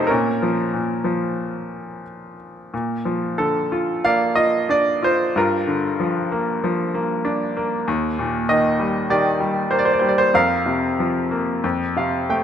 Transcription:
grand piano
Already playing: F2 C3 A3 C4 C#4 D#4 F4 A4 A#4 C5
0.07 C#4 A#4
0.11 A#2
0.43 F3
0.74 A#2
1.04 F3
2.74 A#2
3.05 F3
3.38 D3 A4
3.72 F4
4.05 A#3 D5 F5
4.36 F4 D#5
4.69 D4 D5
5.02 F4 C5
5.36 G2 F4 A#4
5.67 D3
6.00 F3
6.32 A#3
6.64 F3
6.94 A#3
7.25 D4
7.57 A#3
7.88 D#2
8.19 A#2
8.49 D#3 D#5
8.79 G3
9.10 D#3 G4 D5
9.40 G3
9.71 A#3 C5
9.79 D5
9.85 C5
9.93 D5
9.99 G3 C5
10.09 D5
10.18 C5
10.34 F2 A#4 F5
10.66 C3
11.00 F3
11.31 A#3
11.64 F2
11.96 C3 F5
12.30 A3 G5

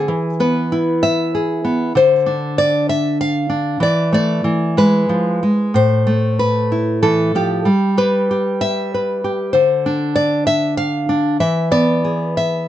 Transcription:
nylon-string guitar
Already playing: G#4
0.08 E3
0.40 B3 B4
0.72 E4
1.03 E5
1.35 G#4
1.65 B3
1.95 D3 C5
2.26 D4
2.58 D5
2.89 E5
3.21 F5
3.50 D4
3.80 E3 D5
4.13 A3 D5
4.44 E3
4.77 G#3 B4
5.09 F3
5.43 G#3
5.74 A2 C5
6.07 A3
6.39 B4
6.72 E4
7.02 E3 A4
7.35 F3 G4
7.65 G3
7.97 G4 B4
8.31 G4
8.61 E5
8.94 B4
9.24 G4
9.53 D3 C5
9.86 D4
10.16 D5
10.47 E5
10.77 F5
11.09 D4
11.40 E3 E5
11.71 B3 D5
12.04 G#4
12.37 E5

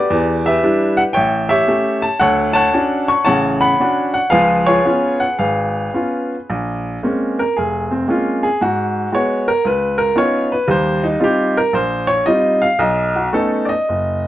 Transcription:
grand piano
Already playing: G4 B4 D5
0.10 E2
0.46 G4 B4 E5
0.63 G3 D4 E4
0.97 F#5
1.13 A1 C#5 E5 G5
1.49 G4 C#5 E5
1.68 A3 C#4 G4
2.02 A5
2.20 D2 A4 C#5 F#5
2.53 C#5 F#5 A5
2.73 C#4 D4 F#4
3.08 C#6
3.25 A1 C#3 C#5 F#5 A5
3.61 F#5 B5
3.80 C#4 D4 F#4
4.14 F#5
4.30 C#2 F3 G#4 B4 F5
4.66 F4 G#4 C#5
4.85 B3 C#4 F4
5.20 F#5
5.38 G#1 G#4 B4 F5
5.94 B3 C#4 F4
6.50 A#1
7.03 G#3 A#3 C4 C#4
7.39 A#4
7.57 F1 G#4
7.91 C4
8.08 G#3 A#3 C4 C#4 F4
8.43 G#4
8.61 G#2 F#4
9.12 G#3 B3 F#4 C#5
9.48 A#4
9.64 C#2 B4
9.98 A#4
10.15 B3 C#4 D#4 F4 C#5
10.52 B4
10.67 D#2 G3 C5
11.03 D#4
11.20 G3 C4 D#4 F4 G4
11.57 A#4
11.73 A#1 C5
12.07 C#5
12.26 G3 C4 D#4 F4 D#5
12.62 F5
12.79 B1 D#5
13.16 F#4
13.33 A3 B3 C#4 D#4 A4
13.65 D5 D#5
13.89 F#1

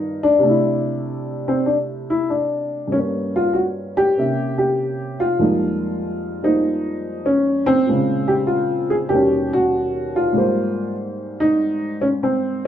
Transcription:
upright piano
Already playing: G2 D#3 D#4 F4 A#4
0.23 D4
0.39 C3 A3
0.46 D4 E4
1.48 C4
1.66 D4
2.10 E4
2.30 D4
2.87 G2
2.92 G3 A#3 C#4
2.99 C#4
3.36 F4
3.53 F#4
3.97 G4
4.17 C3 A#3 C#4 E5
4.58 G4
5.20 F4
5.39 F2 F3 G3 G#3 A#3 D#4
6.42 G3 A#3 D#4 F4 C5
7.26 C#4
7.66 C4
7.86 A#2 G#3 C4
7.91 C#3
8.28 G4
8.47 F4
8.90 G#4
9.09 D#2 B2 D#3 G4
9.14 G3 C#4
9.53 F#4
10.16 F4
10.33 G#2 G3 A#3
10.38 C5
11.40 D#4
12.01 C#4
12.23 C4

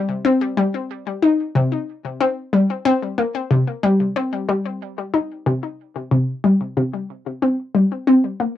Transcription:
synth arpeggio sound
Already playing: G3
0.25 C4
0.57 G3
1.23 D#4
1.55 C3
2.21 C4
2.53 G3
2.85 C4
3.18 A#3
3.51 C3
3.83 G3
4.16 C4
4.49 G3
5.14 D#4
5.46 C3
6.11 C3
6.44 G3
6.77 C3
7.42 C4
7.75 G3
8.07 C4
8.40 A#3

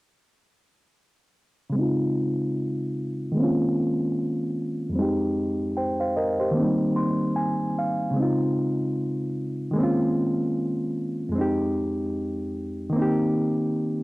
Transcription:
reed electric piano
1.70 C#3 G#3
1.75 C4 D#4
1.81 F4
3.31 D#3 G#3
3.36 A#3 C4
3.41 C#4 F4
4.89 F2 G3
4.96 G#3 C4 D#4
5.02 G4
5.77 C5 G5
6.00 C5 F5
6.16 A#4 D#5
6.40 G4 C5
6.51 D#3 A#3
6.57 C4 D#4
6.63 G3
6.96 C6
7.36 G#5
7.79 F5
8.11 C#3 G#3
8.17 C4 D#4
8.23 F4
9.71 D#3 G#3
9.76 A#3 C4
9.81 C#4 F4
11.29 F2 G#3
11.35 C4 D#4
11.41 G4
12.90 D#3 A#3
12.96 C4 D#4
13.02 G4

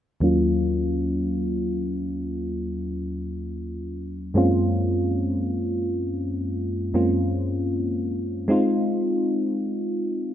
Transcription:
fm electric piano
0.20 D#2 F#3 A#3 C#4 F4
4.34 F#2 G#3 A#3 C4 C#4 F4
6.94 F#2 G#3 A#3 C4 C#4 F4
8.48 G#3 C4 D#4 F4

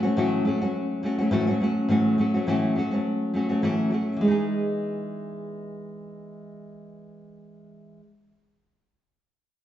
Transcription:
nylon-string guitar
0.03 F#3 A3 C#4 F#4
0.17 A2 E3 F#3 A3 C#4 F#4
0.45 F#3 A3 C#4 F#4
0.61 F#3 A3 C#4 F#4
1.03 F#3 A3 C#4 F#4
1.18 F#3 A3 C#4 F#4
1.31 A2 E3 F#3 A3 C#4 F#4
1.47 F#3 A3 C#4 F#4
1.60 F#3 A3 C#4 F#4
1.88 A2 E3 F#3 A3 C#4 F#4
2.18 F#3 A3 C#4 F#4
2.34 F#3 A3 C#4 F#4
2.47 A2 E3 F#3 A3 C#4 F#4
2.76 F#3 A3 C#4 F#4
2.91 A3 C#4 F#4
2.95 F#3
3.34 F#3 A3 C#4 F#4
3.49 F#3 A3 C#4 F#4
3.62 A2 E3 F#3 A3 C#4 F#4
3.91 F#3 A3 C#4 F#4
4.17 E3
4.21 G#3 B3
4.28 D#4 G#4

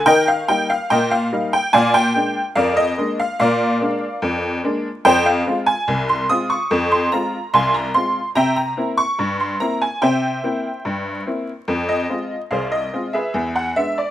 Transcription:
honky-tonk piano
0.06 D#3 A#4 D#5 G5
0.28 F5
0.48 G3 A#3 D#4 G5
0.70 F5
0.90 A#2 A#4 D#5 G5
1.11 F5
1.32 G3 A#3 D#4
1.53 G5
1.73 A#2 D5 F5 G#5
1.94 G5
2.15 G#3 A#3 D4
2.56 F2 A#4 D5 F5
2.77 D#5
2.98 G#3 A#3 D4
3.20 F5
3.40 A#2 A#4 D5 F5
3.81 G#3 A#3 D4
4.22 F2
4.64 G#3 A#3 D4
5.05 F2 C5 G5
5.26 F5
5.46 G#3 C4 F4
5.66 G#5
5.88 C2
6.09 C6
6.29 G#3 C4 F4 D#6
6.50 C#6
6.71 F2
6.92 C6
7.12 G#3 C4 F4 A#5
7.54 C2 F5 G#5 C6
7.74 A#5
7.94 G#3 C4 F4 C6
8.35 C3 E5 G5 A#5
8.56 A#5
8.77 A#3 C4 E4
8.97 C#6
9.19 G2
9.40 C6
9.60 A#3 C4 E4 A#5
9.82 G#5
10.02 C3 C5 E5 G5
10.43 A#3 C4 E4
10.85 G2
11.26 A#3 C4 E4
11.68 F2
11.89 D#5
12.09 G#3 C4 F4
12.51 C2 G#4 C5 F5
12.72 D#5
12.93 G#3 C4 F4
13.13 G#4 B4 E5
13.34 E2
13.56 F#5
13.76 G#3 B3 D4 E5
13.98 D5

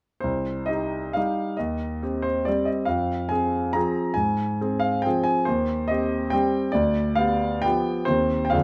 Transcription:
grand piano
0.20 C2 C5
0.66 D#4 G4 D#5
1.13 G3 D#4 G4 F5
1.57 D#2 D#5
2.03 C4 G4
2.22 C5
2.45 G3 C4 G4 D5
2.65 D#5
2.85 F2 F5
3.29 C4 G#4 G#5
3.73 F3 C4 G#4 A#5
4.14 G#2 G#5
4.61 C4 G#4
4.80 F5
5.02 F3 C4 G5
5.06 G#4
5.24 G#5
5.45 D#2 C5
5.88 C4 G4 D#5
6.30 G3 C4 G4 G5
6.72 D2 D5
7.15 B3 G4 F5
7.62 F3 B3 G4 G5
8.05 D#2 D#3 C4 G4 C5
8.45 G5
8.50 F2 D3 D4 G#4 F5

